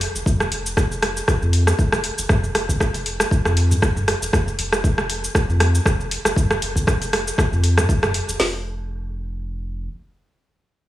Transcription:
0.01 open hi-hat
0.15 F1, shaker
0.26 kick, mid tom, shaker
0.40 cross-stick, shaker
0.51 F1, open hi-hat
0.66 shaker
0.77 kick, cross-stick, shaker
0.91 F1, shaker
1.02 cross-stick, open hi-hat
1.17 shaker
1.28 kick, cross-stick, shaker
1.42 F2, shaker
1.53 open hi-hat
1.67 cross-stick, shaker
1.79 F1, kick, shaker
1.92 cross-stick, shaker
2.04 open hi-hat
2.18 F1, shaker
2.29 kick, cross-stick, mid tom, shaker
2.44 shaker
2.55 F1, cross-stick, open hi-hat
2.69 kick, shaker
2.80 kick, cross-stick, shaker
2.94 F1, open hi-hat, shaker
3.06 open hi-hat
3.20 cross-stick, shaker
3.31 kick, shaker
3.45 F2, cross-stick, shaker
3.57 open hi-hat
3.71 mid tom, shaker
3.82 F1, kick, cross-stick, shaker
3.96 mid tom, shaker
4.08 cross-stick, open hi-hat
4.21 F1, shaker
4.33 kick, cross-stick, mid tom, shaker
4.48 shaker
4.58 F1, open hi-hat
4.73 cross-stick, shaker
4.84 kick, shaker
4.98 F1, cross-stick, shaker
5.10 open hi-hat
5.24 shaker
5.35 kick, cross-stick, shaker
5.49 F2, shaker
5.60 cross-stick, open hi-hat
5.75 shaker
5.85 F1, kick, cross-stick, shaker
6.00 shaker
6.11 open hi-hat
6.24 F1, cross-stick, shaker
6.36 kick, mid tom, shaker
6.51 cross-stick, shaker
6.62 F1, open hi-hat
6.76 kick, shaker
6.87 kick, cross-stick, shaker
7.01 F1, open hi-hat, shaker
7.13 cross-stick, open hi-hat
7.28 shaker
7.38 kick, cross-stick, shaker
7.52 F2, shaker
7.64 open hi-hat
7.78 cross-stick, mid tom, shaker
7.89 F1, kick, shaker
8.03 cross-stick, mid tom, shaker
8.14 open hi-hat
8.28 F1, shaker
8.40 F1, snare, open hi-hat

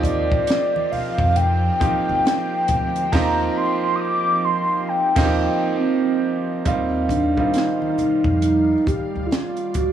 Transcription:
Already playing: D#2 F3 A#3 C4 D#4 F4 G4
0.03 D5, kick, closed hi-hat, high conga
0.32 kick
0.47 snare, closed hi-hat
0.76 high conga
0.92 F5, muted upright bass stroke, open hi-hat, muted conga, low conga
1.18 F2, kick, high conga
1.36 G5, closed hi-hat, muted conga, low conga
1.80 F3 A#3 C4 D#4 G4, muted upright bass stroke, kick, closed hi-hat, muted conga, high conga
2.09 D2
2.25 snare, closed hi-hat, muted conga
2.68 D2, kick, closed hi-hat, muted conga, low conga
2.96 closed hi-hat
3.12 D#2 F3 A#3 C4 D#4 G4 A#5, kick, snare, crash
3.57 C6
3.96 D#6
4.01 D6
4.45 C6
4.89 G5
5.16 D#2 F3 A#3 C4 D#4, kick, snare, crash
5.24 G4
5.77 C4
6.65 D#2 D#3 G3 A#3 C4 D#4 F4 C5 F5, kick, closed hi-hat, muted conga
7.09 D4, kick, closed hi-hat, high conga
7.37 G3 A#3 C4 D#4 F4, kick
7.54 D#4, snare, closed hi-hat
7.82 high conga
7.98 muted upright bass stroke, closed hi-hat, muted conga, low conga
8.24 F2, kick, high conga
8.42 D#4 D5, closed hi-hat, low conga
8.87 G4, muted upright bass stroke, kick, closed hi-hat, muted conga, high conga
9.15 D2
9.26 E4
9.31 F4, snare, closed hi-hat, muted conga
9.57 closed hi-hat
9.74 C#2 F#4, kick, closed hi-hat, low conga

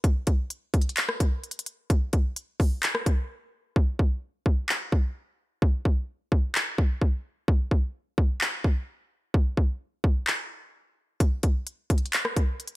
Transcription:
0.04 kick, closed hi-hat
0.27 kick, closed hi-hat
0.50 closed hi-hat
0.74 kick, closed hi-hat
0.82 closed hi-hat
0.89 closed hi-hat
0.97 clap, closed hi-hat
1.09 cross-stick
1.20 kick, closed hi-hat
1.44 closed hi-hat
1.51 closed hi-hat
1.59 closed hi-hat
1.66 closed hi-hat
1.90 kick, closed hi-hat
2.13 kick, closed hi-hat
2.36 closed hi-hat
2.60 kick, open hi-hat
2.83 clap, closed hi-hat
2.95 cross-stick
3.06 kick, closed hi-hat
3.76 kick
3.99 kick
4.46 kick
4.69 clap
4.92 kick
5.62 kick
5.85 kick
6.32 kick
6.55 clap
6.78 kick
7.02 kick
7.48 kick
7.71 kick
8.18 kick
8.41 clap
8.64 kick
9.34 kick
9.57 kick
10.04 kick
10.27 clap
11.20 kick, closed hi-hat
11.43 kick, closed hi-hat
11.67 closed hi-hat
11.90 kick, closed hi-hat
11.98 closed hi-hat
12.06 closed hi-hat
12.13 clap, closed hi-hat
12.25 cross-stick
12.37 kick, closed hi-hat
12.60 closed hi-hat
12.68 closed hi-hat

